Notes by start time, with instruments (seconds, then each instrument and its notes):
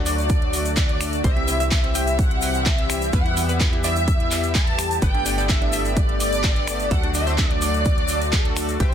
Already playing: analog synth bass D2, analog polysynth D3 A3 D4 F#4 D5, analog synth pad D3 F#3 A3 F#4
0.06 synth arpeggio sound D5, analog synth lead D5, violin section D5, open hi-hat, shaker
0.18 closed hi-hat, shaker
0.29 kick, closed hi-hat, shaker
0.42 closed hi-hat
0.53 open hi-hat, shaker
0.65 closed hi-hat, shaker
0.76 analog synth lead D5, violin section D5, kick, clap, closed hi-hat, shaker
0.89 closed hi-hat
1.01 analog polysynth A3 D4 F#4 D5, finger snap, open hi-hat, shaker
1.13 closed hi-hat, shaker
1.24 analog synth bass C2, analog polysynth C3 C4 E4 G4 E5, analog synth pad E3 G3 C4 G4, synth arpeggio sound C5, analog synth lead E5, violin section E5, kick, closed hi-hat, shaker
1.37 synth arpeggio sound C4, closed hi-hat
1.48 synth arpeggio sound C4, open hi-hat, shaker
1.60 synth arpeggio sound E5, closed hi-hat, shaker
1.71 synth arpeggio sound C4, analog synth lead E5, violin section E5, kick, clap, closed hi-hat, shaker
1.84 synth arpeggio sound C4, closed hi-hat
1.95 synth arpeggio sound G5, open hi-hat, shaker
2.07 closed hi-hat, shaker
2.19 analog synth lead F#5, violin section F#5, kick, closed hi-hat, shaker
2.31 closed hi-hat
2.42 open hi-hat, shaker
2.54 closed hi-hat, shaker
2.66 analog synth lead E5, violin section E5, kick, clap, closed hi-hat, shaker
2.78 closed hi-hat
2.90 analog polysynth C4 E4 G4 E5, finger snap, open hi-hat, shaker
3.02 closed hi-hat, shaker
3.13 analog synth bass E2, analog polysynth E3 B3 E4 G4 E5, analog synth pad B3, synth arpeggio sound B4, analog synth lead F#5, violin section F#5, kick, closed hi-hat, shaker
3.25 synth arpeggio sound E4, closed hi-hat
3.37 synth arpeggio sound E4, open hi-hat, shaker
3.49 synth arpeggio sound B4, closed hi-hat, shaker
3.60 synth arpeggio sound E4, kick, clap, closed hi-hat, shaker
3.73 synth arpeggio sound E4, closed hi-hat
3.84 synth arpeggio sound D5, analog synth lead E5, violin section E5, open hi-hat, shaker
3.96 closed hi-hat, shaker
4.08 kick, closed hi-hat, shaker
4.20 closed hi-hat
4.31 clap, open hi-hat, shaker
4.43 closed hi-hat, shaker
4.55 analog synth lead A5, violin section A5, kick, clap, closed hi-hat, shaker
4.67 closed hi-hat
4.79 finger snap, open hi-hat, shaker
4.91 closed hi-hat, shaker
5.02 analog synth bass G1, analog polysynth G2 B3 G4 A4 D5, analog synth pad D3 A3, synth arpeggio sound B4, analog synth lead G5, violin section G5, kick, closed hi-hat, shaker
5.14 synth arpeggio sound D4, closed hi-hat
5.26 synth arpeggio sound D4, open hi-hat, shaker
5.38 synth arpeggio sound D5, closed hi-hat, shaker
5.49 synth arpeggio sound D4, analog synth lead E5, violin section E5, kick, clap, closed hi-hat, shaker
5.62 synth arpeggio sound D4, closed hi-hat
5.73 synth arpeggio sound E5, open hi-hat, shaker
5.85 closed hi-hat, shaker
5.96 analog synth lead D5, violin section D5, kick, closed hi-hat, shaker
6.09 closed hi-hat
6.20 analog synth lead D5, violin section D5, open hi-hat, shaker
6.33 closed hi-hat, shaker
6.44 kick, clap, closed hi-hat, shaker
6.56 closed hi-hat
6.67 analog polysynth B3 G4 A4 D5, finger snap, open hi-hat, shaker
6.80 closed hi-hat, shaker
6.91 analog synth bass D2, analog polysynth D3 A3 F#4 D5, analog synth pad F#3 F#4, synth arpeggio sound A4, analog synth lead F#5, violin section F#5, kick, closed hi-hat, shaker
7.03 synth arpeggio sound D4, closed hi-hat
7.14 synth arpeggio sound D4, analog synth lead E5, violin section E5, open hi-hat, shaker
7.27 synth arpeggio sound C5, closed hi-hat, shaker
7.38 synth arpeggio sound D4, kick, clap, closed hi-hat, shaker
7.50 synth arpeggio sound D4, analog synth lead D5, closed hi-hat
7.62 synth arpeggio sound D5, analog synth lead D5, violin section D5, open hi-hat, shaker
7.74 closed hi-hat, shaker
7.85 kick, closed hi-hat, shaker
7.98 closed hi-hat
8.08 open hi-hat, shaker
8.22 closed hi-hat, shaker
8.33 violin section A4, analog synth lead A4, kick, clap, closed hi-hat, shaker
8.45 closed hi-hat
8.56 analog polysynth A3 D4 F#4 D5, finger snap, open hi-hat, shaker
8.68 closed hi-hat, shaker
8.80 analog synth bass C2, analog polysynth C3 C4 E4 G4 E5, analog synth pad E3 G3 C4 G4, synth arpeggio sound G4, analog synth lead C5, violin section C5, kick, closed hi-hat, shaker